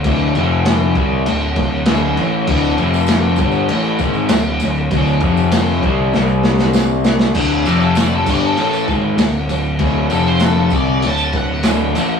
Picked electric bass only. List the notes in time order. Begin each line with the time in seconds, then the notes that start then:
0.05 D1
0.36 F1
0.96 C2
1.28 D1
1.56 D1
1.88 D1
2.19 A1
2.47 D1
2.80 F1
3.39 G1
3.71 A1
4.00 G#1
4.31 D1
4.63 D1
4.91 D1
5.21 F1
5.83 C2
6.14 C2
7.35 D1
7.66 F1
8.27 G1
8.57 A1
8.88 G#1
9.18 D1
9.49 D1
9.80 D1
10.11 F1
10.72 C2
11.04 D1
11.33 D1
11.65 D1
11.95 A1